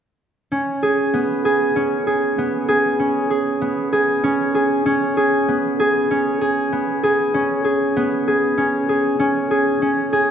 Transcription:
harp
0.52 C#4
0.83 G#4
1.14 B3
1.45 G#4
1.76 C#4
2.07 G#4
2.38 B3
2.68 G#4
2.99 C#4
3.30 G#4
3.61 B3
3.93 G#4
4.24 C#4
4.55 G#4
4.86 C#4
5.17 G#4
5.48 B3
5.80 G#4
6.11 C#4
6.41 G#4
6.72 B3
7.03 G#4
7.34 C#4
7.65 G#4
7.97 B3
8.28 G#4
8.58 C#4
8.89 G#4
9.19 C#4
9.51 G#4
9.82 C#4
10.13 G#4

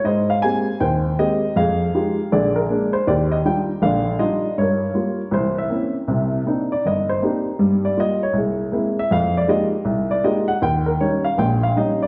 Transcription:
upright piano
0.04 G#2 C5 D#5
0.30 F5
0.42 G#3 A#3 C4 G4 G#5
0.80 D#2 C5 G5
1.18 G#3 A#3 C4 G4 D#5
1.56 F2 G#4 F5
1.94 G#3 D#4 F4 G4
2.32 A#1 D3 G#4 D5
2.56 A#4
2.70 G#3 A#3 D4
2.93 C5
3.07 D#2 G4 D5
3.32 D#5
3.45 G3 D4 D#4 F4 G5
3.82 A#1 D3 D5 F5
4.18 G3 D4 D#4 F4 D#5
4.58 G2 A#4 C#5
4.93 G3 A#3 F4
5.31 C2 E3 C5
5.35 E4
5.58 E5
5.70 A#3 C4 C#4 E4
6.08 C2 C3
6.46 A#3 C4 D4 D#4
6.72 D5
6.86 G1 D#5
7.09 C5
7.22 A#3 C4 D4 D#4 G4
7.59 G2 G3
7.85 D5
7.97 G3 A#3 F4 D#5
8.23 C#5
8.33 C2
8.37 G#4
8.72 G#3 A#3 C4 E4
8.99 E5
9.11 F2 F5
9.37 D5
9.48 G#3 A#3 D#4 F4 G4 D#5
9.85 C2
10.11 D5
10.24 G#3 A#3 D#4 F4 G4 D#5
10.48 F#5
10.62 D#2 G5
10.86 A#4
11.00 G3 C#4 D#4 C#5
11.25 F5
11.38 A#1 A#2 G5
11.63 F5
11.76 G3 C#4 D#4 D#5
12.03 D5

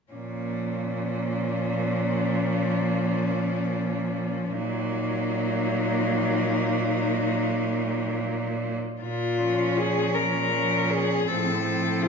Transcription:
cello
0.12 A#2 F3 A#3 C#4
4.52 A#2 F#3 A#3 D#4
9.01 A#2 F4
9.40 F3 C#4
9.77 G#4
10.15 A#2 A#4
10.53 F3 C#4
10.90 G#4
11.26 A2 F3 C4 A4
11.63 F3 C4
12.03 F4

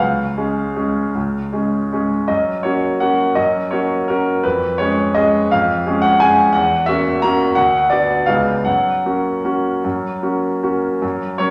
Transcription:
grand piano
0.00 C#2 F5
0.37 G#3 C#4 G#4
0.76 G#3 C#4 G#4
1.15 C#2
1.52 G#3 C#4 G#4
1.93 G#3 C#4 G#4
2.28 F#2 D#5
2.63 A#3 C#4 F#4 C#5
3.00 A#3 C#4 F#4 F#5
3.35 F#2 D#5
3.71 A#3 C#4 F#4 C#5
4.08 A#3 C#4 F#4 A#4
4.44 F2 B4
4.78 G#3 C#4 G#4 C#5
5.14 G#3 C#4 G#4 D#5
5.51 F2 F5
5.87 G#3 C#4 G#4
6.02 F#5
6.20 G#3 C#4 G#4 G#5
6.53 E2 F#5
6.86 A#3 C#4 F#4 E5
7.22 A#3 C#4 F#4 A#5
7.55 D2 F#5
7.90 B3 D4 F#4 D5
8.26 C#2 B3 D#4 G#4 F5
8.65 F#2 F#5
9.06 A#3 C#4 F#4
9.44 A#3 C#4 F#4
9.85 F#2
10.22 A#3 C#4 F#4
10.63 A#3 C#4 F#4
11.02 F#2
11.38 F#3 C#4 A#4 C#5

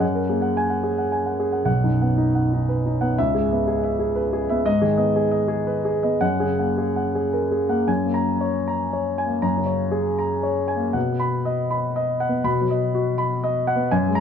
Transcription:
grand piano
0.00 F#2 F#5
0.15 A#4
0.29 A#3 G#4
0.42 F#5
0.57 G#5
0.70 F#5
0.83 G#4
0.98 F#5
1.12 G#5
1.26 F#5
1.40 G#4
1.52 F#5
1.65 B1 F#5
1.84 F#2 D#4
2.02 B3 F#5
2.18 D#4
2.35 F#5
2.53 D#4
2.69 B4
2.86 D#4
3.01 B3 F#5
3.18 C#2 E5
3.35 G#2 G#4
3.52 B3 E5
3.68 G#4
3.84 E5
3.99 G#4
4.16 B4
4.33 G#4
4.49 B3 E5
4.66 G#2 D#5
4.82 D#3 G#4
4.98 B3 D#5
5.16 G#4
5.31 D#5
5.48 G#4
5.67 B4
5.85 G#4
6.03 B3 D#5
6.21 F#2 F#5
6.40 C#3 G#4
6.59 A#3 F#5
6.78 G#4
6.96 F#5
7.15 G#4
7.33 A#4
7.51 G#4
7.69 A#3 F#5
7.88 F#2 G#5
8.06 A#3
8.14 A#5
8.41 C#5
8.68 A#5
8.93 C#5
9.18 G#5
9.26 A#3
9.42 F#2 A#5
9.58 C#3
9.66 C#5
9.92 G#4
10.19 A#5
10.43 C#5
10.68 G#5
10.76 A#3
10.93 B2 F#5
11.12 B3
11.20 B5
11.45 D#5
11.71 B5
11.96 D#5
12.20 F#5
12.29 B3
12.44 B2 B5
12.61 F#3
12.71 D#5
12.95 F#4
13.18 B5
13.44 D#5
13.67 F#5
13.76 B3
13.91 F#2 G#5
14.08 G#3
14.15 A#5

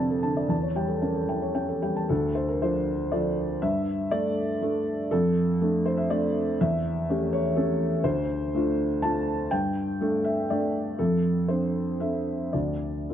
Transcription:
felt piano
Already playing: F2 C3 D3 C4 A4 A#4 D5 A5
0.10 A4
0.23 D3 A5
0.37 D5
0.49 E2 A5
0.62 C#5
0.76 G3 G5
0.88 A4
1.02 C#4 A#4
1.14 A4
1.29 E3 G5
1.42 C#5
1.55 C#4 G5
1.68 A4
1.82 G3 G5
1.96 A5
2.09 D2 A4
2.35 C5
2.49 A#4
2.62 F3 D4 A4 C5
3.12 F3 D4 A4 D5
3.62 G2 E5
4.11 A3 D4 A4 D5
4.62 A3 D4 A4
5.11 F2 A4
5.61 A3 D4 A4
5.86 C5
5.97 E5
6.10 A3 D4 A4 D5
6.61 E2 E5
7.10 A3 C#4 G4
7.33 C#5
7.56 A3 C#4 G4 A4
8.04 D2 C5
8.54 A3 D4 F4
9.02 A3 D4 F4 A5
9.51 G2 G5
10.01 A3 D4 A4
10.24 E5
10.50 A3 D4 A4 D5
10.99 F2 A4
11.48 C4 D4 A4 C5
12.00 C4 D4 A4 E5
12.53 D2 D5
13.10 C4 F4 A4

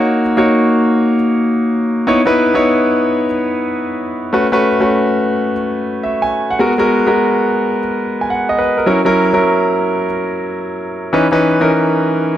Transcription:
grand piano
Already playing: A#3 D#4 F#4 C#5
0.37 A#3 D#4 F#4 C#5
2.07 B3 D#4 E4 C#5
2.25 B3 D#4 E4 B4
2.54 B3 D#4 E4 C#5
4.33 A3 C#4 F#4 B4
4.52 A3 C#4 F#4 B4
4.80 A3 C#4 F#4 B4
6.03 E5
6.22 G#5
6.51 F#5
6.59 G#3 B3 F#4 A#4
6.78 G#3 B3 F#4 A#4
7.07 G#3 B3 F#4 A#4
8.21 G#5
8.30 F#5
8.49 D#5
8.59 B4
8.77 A#4
8.86 F#3 C#4 E4 A#4
9.05 F#3 C#4 E4 A#4
9.33 F#3 C#4 E4 A#4
11.13 E3 C#4 D#4 B4
11.32 E3 C#4 D#4 B4
11.60 E3 C#4 D#4 A#4

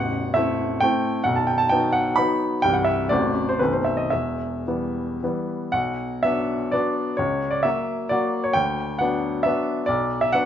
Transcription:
grand piano
Already playing: A0 A1 F#5
0.34 A3 C4 E4 E5
0.80 A3 C4 E4 G5
1.24 B0 B1 F#5
1.36 A5
1.47 G5
1.58 A5
1.69 F#3 B3 D#4 G5
1.92 F#5
2.16 F#3 B3 D#4 B5
2.62 C1 C2 E3 G3 E4 G5
2.73 F#5
2.84 E5
3.09 A0 A1 F#3 A3 C4 D5
3.49 C5
3.59 B0 B1 D#3 A3 C4 B4
3.72 C5
3.84 E5
3.97 D#5
4.10 E1 E2 E5
4.67 E3 G3 B3
5.23 E3 G3 B3
5.72 B1 F#5
6.23 F#3 B3 D4 E5
6.72 F#3 B3 D4 D5
7.17 C#2 C#5
7.51 D5
7.63 F#3 A#3 F#4 E5
8.09 F#3 A#3 F#4 D5
8.44 C#5
8.53 D2 G5
8.99 F#3 B3 D4 F#5
9.43 F#3 B3 D4 E5
9.86 B1 D5
10.21 E5
10.33 F#3 B3 D4 F#5

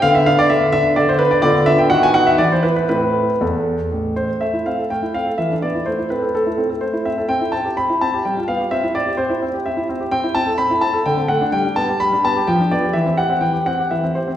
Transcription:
grand piano
0.02 D3 B3 D4 F5
0.15 E5
0.26 D4 F5
0.39 D5
0.50 D3 E5
0.72 D4 E5
0.96 D3 D5
1.09 C5
1.19 D4 B4
1.31 D5
1.42 D3 B3 F4 D5
1.66 D4 E5
1.78 G5
1.90 D#3 B3 F#4 F#5
2.03 G#5
2.14 D#4 F#5
2.27 E5
2.38 E3 B3 E4 D5
2.52 C5
2.63 E4 B4
2.76 B4
2.89 A2 C4 E4 B4
3.41 E2 A4
3.92 A1
4.16 C5
4.41 A3 E5
4.53 E4
4.66 C4 F5
4.79 A4
4.90 A3 G5
5.03 E4
5.14 C4 F5
5.26 A4
5.38 E3 E5
5.51 D4
5.62 B3 D5
5.75 E4
5.86 A3 C5
5.99 E4
6.10 C4 B4
6.22 A4
6.35 A3 A4
6.47 E4
6.58 C4
6.70 A4
6.81 A3 C5
6.93 E4
7.05 C4 E5
7.18 A4
7.29 C4 G5
7.41 E4
7.52 C4 A5
7.65 G4
7.77 C4 B5
7.89 E4
8.01 C4 A5
8.14 G4
8.25 G3 G5
8.37 F4
8.48 B3 F5
8.60 G4
8.71 C4 E5
8.83 E4
8.95 C4 D5
9.06 G4
9.17 C4 C5
9.30 E4
9.42 C4
9.54 G4
9.66 C4 E5
9.77 E4
9.89 C4
10.00 G4
10.11 C4 G5
10.24 E4
10.35 C4 A5
10.46 A4
10.58 C4 B5
10.70 E4
10.81 C4 A5
10.94 A4
11.06 D3 G5
11.17 C4
11.28 A3 F#5
11.41 D4
11.52 G3 G5
11.65 D4
11.76 B3 A5
11.89 G4
12.00 G3 B5
12.13 D4
12.25 B3 A5
12.36 G4
12.47 F3 G5
12.60 D4
12.71 B3 D5
12.83 G4
12.93 E3 E5
13.06 C4
13.18 G4 F#5
13.30 C4
13.41 E3 G5
13.53 G4
13.66 C4 F#5
13.79 G4
13.91 E3 E5
14.04 C4
14.15 G4 C5
14.28 C4

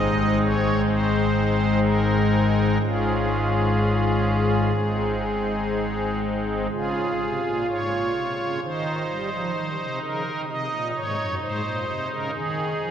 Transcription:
pipe organ
Already playing: G#1 G#2 G#3 C4 D#4 D#5
0.42 C#5
0.88 C5
1.83 A#4
2.81 G#1 G#2 G#3 C#4 F4 G#4
4.77 G#1 G#2 G#3 C4 D#4
6.71 C#3 F4 G#4
7.20 C3
7.45 A#2
7.69 G#2 C#5
7.92 A#2
8.16 C3
8.40 C#3
8.63 D#3 D#4 C5
9.09 G3
9.32 F3
9.56 D#3
9.79 C3
10.02 C#3 A#4
10.26 D#3
10.49 C3 D#4 D#5
10.72 A#2
10.96 G#2 C#5
11.18 F#2
11.42 G#2 C5
11.65 A#2
11.89 C3
12.11 C#3 A#4
12.35 D#3 G#4
12.81 F3

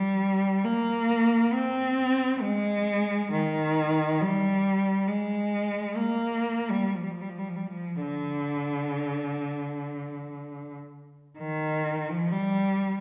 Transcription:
cello
Already playing: G3
0.64 A#3
1.52 C4
2.42 G#3
3.32 D#3
4.21 G3
5.07 G#3
5.97 A#3
6.70 G3
6.95 F3
7.03 G3
7.11 F3
7.21 G3
7.29 F3
7.39 G3
7.49 F3
7.56 G3
7.67 F3
8.01 D3
11.38 D#3
12.09 F3
12.32 G3

